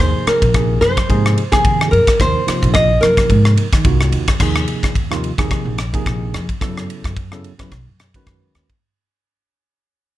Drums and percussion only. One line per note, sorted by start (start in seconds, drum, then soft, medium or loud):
0.00 cross-stick medium
0.00 ride medium
0.27 cross-stick medium
0.27 ride medium
0.42 kick medium
0.42 ride medium
0.54 kick medium
0.54 cross-stick medium
0.54 ride medium
0.82 cross-stick medium
0.82 ride medium
0.97 kick medium
0.97 cross-stick medium
0.97 ride medium
1.10 kick medium
1.10 ride medium
1.26 cross-stick medium
1.38 ride medium
1.52 kick medium
1.52 cross-stick medium
1.52 ride medium
1.65 kick loud
1.65 ride medium
1.81 cross-stick medium
1.93 ride medium
2.07 kick medium
2.07 cross-stick medium
2.07 ride medium
2.20 kick medium
2.20 cross-stick medium
2.20 ride medium
2.48 cross-stick medium
2.48 ride medium
2.63 kick medium
2.63 ride soft
2.75 kick loud
2.75 cross-stick medium
2.75 ride medium
3.03 cross-stick medium
3.03 ride medium
3.17 kick medium
3.17 cross-stick medium
3.17 ride medium
3.30 kick medium
3.30 ride medium
3.45 cross-stick medium
3.57 ride medium
3.73 kick medium
3.73 cross-stick medium
3.73 ride medium
3.85 kick loud
3.85 ride medium
4.01 cross-stick medium
4.12 ride medium
4.28 kick medium
4.28 cross-stick medium
4.28 ride medium
4.40 kick medium
4.40 cross-stick medium
4.40 crash medium
4.56 cross-stick medium
4.68 ride medium
4.83 kick medium
4.83 cross-stick medium
4.83 ride soft
4.95 kick medium
4.95 ride soft
5.12 cross-stick medium
5.24 ride soft
5.38 kick medium
5.38 cross-stick medium
5.38 ride medium
5.51 kick medium
5.51 cross-stick medium
5.51 ride soft
5.78 cross-stick medium
5.78 ride medium
5.94 kick medium
5.94 ride soft
6.06 kick medium
6.06 cross-stick medium
6.06 ride soft
6.34 cross-stick medium
6.34 ride medium
6.49 kick medium
6.49 ride soft
6.61 kick medium
6.61 cross-stick medium
6.61 ride medium
6.77 cross-stick medium
6.90 ride medium
7.04 kick medium
7.04 cross-stick medium
7.04 ride soft
7.17 kick medium
7.17 ride medium
7.32 cross-stick medium
7.44 ride soft
7.59 kick medium
7.59 cross-stick medium
7.59 ride medium
7.72 kick medium
7.72 cross-stick medium
7.72 ride medium
8.00 cross-stick medium
8.00 ride medium
8.14 kick medium
8.14 ride medium
8.27 kick medium
8.27 cross-stick medium
8.27 ride soft
8.55 cross-stick medium
8.55 ride medium
8.70 kick medium
8.70 ride soft